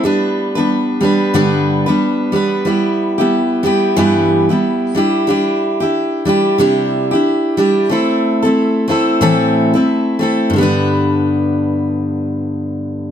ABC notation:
X:1
M:4/4
L:1/16
Q:"Swing 16ths" 1/4=91
K:G
V:1 name="Steel-string acoustic guitar"
[G,B,DB]3 [G,B,DB]3 [G,B,DB]2 [G,,D,G,B,DB]3 [G,B,DB]3 [G,B,DB]2 | [G,B,EG]3 [G,B,EG]3 [G,B,EG]2 [G,,E,G,B,EG]3 [G,B,EG]3 [G,DEG]2 | [G,DEG]3 [DEG]3 [G,DEG]2 [C,G,DEG]3 [DEG]3 [G,DEG]2 | [A,CEA]3 [A,CEA]3 [A,CEA]2 [A,,E,A,CEA]3 [A,CEA]3 [A,CEA]2 |
[G,,D,G,B,DB]16 |]